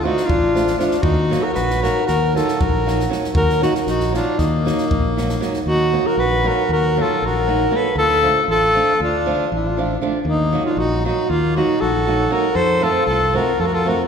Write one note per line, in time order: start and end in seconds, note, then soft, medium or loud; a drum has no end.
0.03 0.21 F3 medium
0.03 0.21 A3 medium
0.03 0.21 D4 soft
0.03 0.29 D#4 medium
0.03 0.21 F4 medium
0.03 0.27 F#4 medium
0.17 snare soft
0.26 0.74 A1 medium
0.26 0.76 D4 medium
0.26 0.77 F4 loud
0.26 kick medium
0.55 0.71 F3 medium
0.55 0.71 A3 medium
0.55 0.72 D4 medium
0.55 0.72 F4 medium
0.55 snare soft
0.67 snare soft
0.78 0.95 F3 medium
0.78 0.95 A3 medium
0.78 1.01 D4 medium
0.78 0.96 D4 medium
0.78 1.03 F4 medium
0.78 0.96 F4 medium
0.78 snare soft
0.91 snare soft
1.02 1.35 D#2 loud
1.02 1.40 D#4 medium
1.02 1.42 F#4 loud
1.02 kick loud
1.30 1.47 F#3 medium
1.30 1.48 A#3 medium
1.30 1.48 D#4 medium
1.30 1.48 F#4 medium
1.30 snare soft
1.40 1.52 F#4 medium
1.40 1.44 A4 medium
1.40 1.57 A#4 medium
1.40 1.45 B4 medium
1.53 1.88 A#1 medium
1.53 1.80 F#4 medium
1.53 1.85 B4 loud
1.53 snare soft
1.70 snare soft
1.81 2.00 F#3 medium
1.81 2.00 A#3 medium
1.81 2.00 D#4 medium
1.81 2.04 F#4 medium
1.81 2.00 F#4 medium
1.81 2.07 A#4 medium
1.81 snare soft
2.05 2.40 D#2 medium
2.05 2.33 F#4 medium
2.05 2.34 A#4 loud
2.05 snare soft
2.34 2.52 F#3 medium
2.34 2.52 A#3 soft
2.34 2.52 D#4 medium
2.34 2.58 F4 medium
2.34 2.53 F#4 medium
2.34 2.63 A4 medium
2.34 snare soft
2.48 snare soft
2.58 3.06 A#1 loud
2.58 3.10 F#4 medium
2.58 3.11 A#4 loud
2.58 kick medium
2.86 3.03 F#3 medium
2.86 3.03 A#3 soft
2.86 3.03 D#4 medium
2.86 3.03 F#4 medium
2.86 snare soft
3.00 snare soft
3.10 3.26 F#3 medium
3.10 3.26 A#3 soft
3.10 3.27 D#4 medium
3.10 3.27 F#4 medium
3.10 snare soft
3.24 snare soft
3.35 3.67 D#2 medium
3.35 3.61 F#4 medium
3.35 3.62 A#4 loud
3.35 kick loud
3.49 snare soft
3.61 3.78 F#3 medium
3.61 3.78 A#3 soft
3.61 3.79 D#4 medium
3.61 3.74 D#4 medium
3.61 3.79 F#4 medium
3.61 3.74 F#4 medium
3.61 snare soft
3.75 snare soft
3.86 4.18 A#1 medium
3.86 4.13 D#4 medium
3.86 4.14 F#4 medium
3.86 snare soft
4.00 snare soft
4.12 4.30 F#3 medium
4.12 4.31 A#3 soft
4.12 4.38 D4 medium
4.12 4.31 D#4 medium
4.12 4.40 F4 medium
4.12 4.31 F#4 medium
4.12 snare soft
4.38 4.71 D#2 medium
4.38 5.41 A#3 medium
4.38 5.41 D#4 medium
4.38 kick medium
4.38 snare soft
4.65 4.83 F#3 medium
4.65 4.83 A#3 soft
4.65 4.83 D#4 soft
4.65 4.83 F#4 medium
4.65 snare soft
4.78 snare soft
4.91 5.36 A#1 medium
4.91 kick medium
5.17 5.33 F#3 medium
5.17 5.34 A#3 soft
5.17 5.34 D#4 medium
5.17 5.34 F#4 medium
5.17 snare soft
5.29 snare soft
5.41 5.57 F#3 medium
5.41 5.58 A#3 medium
5.41 5.58 D#4 medium
5.41 5.58 F#4 medium
5.41 snare soft
5.53 snare soft
5.66 5.97 D#2 medium
5.66 6.03 D#4 medium
5.66 6.08 F#4 loud
5.93 6.09 F#3 medium
5.93 6.09 A#3 medium
5.93 6.10 D#4 soft
5.93 6.10 F#4 medium
6.07 6.16 F#4 medium
6.07 6.21 A#4 medium
6.17 6.49 A#1 medium
6.17 6.46 F#4 medium
6.17 6.49 B4 loud
6.44 6.61 F#3 medium
6.44 6.61 A#3 soft
6.44 6.62 D#4 soft
6.44 6.62 F#4 medium
6.44 6.71 F#4 medium
6.44 6.71 A#4 medium
6.69 7.01 D#2 medium
6.69 6.98 F#4 medium
6.69 7.03 A#4 loud
6.97 7.14 F#3 medium
6.97 7.14 A#3 medium
6.97 7.14 D#4 soft
6.97 7.15 F#4 medium
7.01 7.24 F4 medium
7.01 7.27 A4 medium
7.22 7.66 A#1 medium
7.22 7.73 F#4 medium
7.22 7.78 A#4 loud
7.47 7.64 F#3 soft
7.47 7.64 A#3 soft
7.47 7.64 D#4 soft
7.47 7.64 F#4 medium
7.71 7.87 F#3 medium
7.71 7.88 A#3 medium
7.71 7.88 D#4 soft
7.71 7.88 F#4 medium
7.71 7.97 A4 medium
7.76 7.98 B4 medium
7.95 8.27 D2 loud
7.95 8.46 F4 medium
7.95 8.46 A4 loud
8.22 8.39 F3 medium
8.22 8.40 A3 medium
8.22 8.40 D4 medium
8.22 8.40 F4 medium
8.48 8.79 A1 medium
8.48 8.98 F4 medium
8.48 8.98 A4 loud
8.74 8.91 F3 medium
8.74 8.92 A3 soft
8.74 8.92 D4 medium
8.74 8.92 F4 medium
9.00 9.31 D2 medium
9.00 9.50 D4 medium
9.00 9.50 F4 medium
9.26 9.43 F3 medium
9.26 9.43 A3 medium
9.26 9.43 D4 medium
9.26 9.44 F4 medium
9.52 9.96 A1 medium
9.52 9.98 D4 medium
9.56 10.00 F4 medium
9.77 9.94 F3 medium
9.77 9.94 A3 medium
9.77 9.94 D4 medium
9.77 9.95 F4 medium
10.01 10.17 F3 medium
10.01 10.18 A3 medium
10.01 10.18 D4 medium
10.01 10.18 F4 medium
10.25 10.56 D#2 loud
10.25 10.63 A#3 medium
10.25 10.63 D#4 medium
10.53 10.69 F#3 medium
10.53 10.70 A#3 medium
10.53 10.70 D#4 medium
10.53 10.70 F#4 medium
10.66 10.77 D4 medium
10.66 10.80 F4 medium
10.77 11.08 A#1 medium
10.77 11.04 D#4 medium
10.77 11.05 F#4 loud
11.05 11.21 F#3 medium
11.05 11.22 A#3 soft
11.05 11.28 D#4 medium
11.05 11.22 D#4 medium
11.05 11.32 F#4 medium
11.05 11.22 F#4 medium
11.29 11.61 D#2 medium
11.29 11.57 A#3 medium
11.29 11.56 F4 loud
11.56 11.73 F#3 medium
11.56 11.73 A#3 soft
11.56 11.79 D#4 medium
11.56 11.74 D#4 medium
11.56 11.83 F#4 loud
11.56 11.74 F#4 medium
11.80 12.26 A#1 medium
11.80 12.30 F#4 medium
11.80 12.33 A4 loud
12.07 12.23 F#3 medium
12.07 12.24 A#3 soft
12.07 12.24 D#4 medium
12.07 12.24 F#4 medium
12.30 12.47 F#3 medium
12.30 12.47 A#3 medium
12.30 12.48 D#4 medium
12.30 12.55 F#4 medium
12.30 12.48 F#4 medium
12.30 12.57 A#4 loud
12.53 12.86 F2 loud
12.53 12.82 A4 medium
12.53 12.85 C5 loud
12.81 12.98 F3 medium
12.81 12.98 A3 medium
12.81 12.99 C4 medium
12.81 13.06 F4 medium
12.81 12.99 F4 medium
12.81 13.06 A4 loud
13.06 13.38 C2 medium
13.06 13.33 F4 medium
13.06 13.37 A4 loud
13.33 13.50 F3 medium
13.33 13.51 A3 medium
13.33 13.51 C4 soft
13.33 13.51 F4 medium
13.33 13.59 F#4 medium
13.33 13.62 A#4 medium
13.59 13.91 F2 medium
13.59 13.66 F4 medium
13.59 13.68 A4 medium
13.65 13.72 F#4 medium
13.65 13.76 A#4 medium
13.73 13.87 F4 medium
13.73 13.90 A4 medium
13.86 14.03 F3 medium
13.86 14.03 A3 medium
13.86 14.03 C4 soft
13.86 14.03 F4 medium
13.86 14.03 F#4 medium
13.86 14.04 A#4 medium
14.04 14.07 A#4 medium